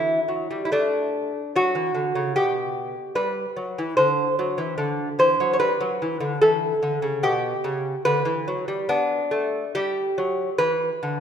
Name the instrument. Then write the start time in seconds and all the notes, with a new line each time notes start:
lute
Already playing: E3 E4
0.28 F#3
0.51 G3
0.65 E4
0.72 A3 D4
1.56 F#3 F#4
1.75 E3
1.95 D3
2.15 C#3
2.36 B2 G4
3.15 G3 B4
3.57 F#3
3.78 E3
3.97 D3 C5
4.39 F#3
4.58 E3
4.78 D3
5.19 E3 C5
5.40 F#3
5.53 C#5
5.60 G3 B4
5.81 F#3
6.02 E3
6.20 D3
6.41 E3 A4
6.83 D3
7.02 C#3
7.23 B2 G4
7.64 C#3
8.05 D3 B4
8.25 E3
8.48 F#3
8.68 G3
8.89 B3 D4
9.31 A3
9.75 G3 G4
10.18 F#3
10.58 E3 B4
11.03 D3